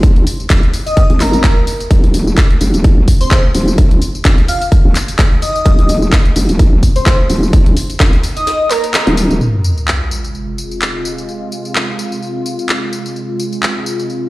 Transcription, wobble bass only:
0.03 F1
0.50 D#1
1.10 G#1
1.91 D#1
2.61 F#1
2.74 D#1
3.55 D#1
3.78 D#1
4.25 C#2
4.85 D#1
5.66 D#1
6.36 F#1
6.49 D#1
7.30 D#1
7.53 D#1
8.00 C#2
9.07 D#1
9.30 D#1

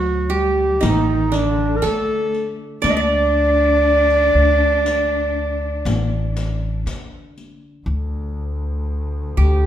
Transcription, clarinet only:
Already playing: F#4
0.35 G4
0.85 D#4
1.37 D4
1.77 A#4
1.86 A4
2.84 D5
2.91 D#5
3.01 D5
9.38 G4

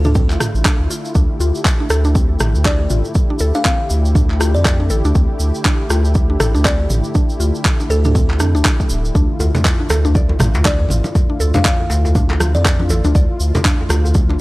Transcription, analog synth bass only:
Already playing: D2
0.55 A1
0.80 D2
1.15 D2
1.40 D2
1.90 D2
2.40 A1
2.55 D2
2.90 A1
3.41 D2
3.91 D2
4.55 F2
4.90 A1
5.05 D2
5.15 D2
5.40 D2
5.90 D2
6.40 A1
6.55 D2
6.90 A1
7.40 D2
7.90 D2
8.40 F2
8.54 D2
8.90 D1
9.15 D2
9.40 D2
9.90 D2
10.40 A1
10.55 D2
10.90 A1
11.40 D2
11.90 D2
12.55 F2
12.90 A1
13.05 D2
13.15 D2
13.40 D2
13.90 D2

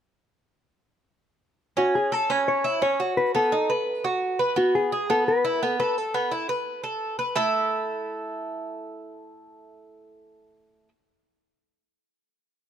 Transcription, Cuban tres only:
1.77 C#4
2.12 A4
2.30 C#4
2.64 E4
2.82 C#4
3.00 F#4
3.35 B3
3.52 D#4
3.70 B4
4.04 F#4
4.39 B4
4.56 B3
4.92 G#4
5.10 B3
5.45 E4
5.63 B3
5.80 A4
6.14 B3
6.32 E4
6.49 B4
6.84 A4
7.19 B4
7.36 A3 E4 A4

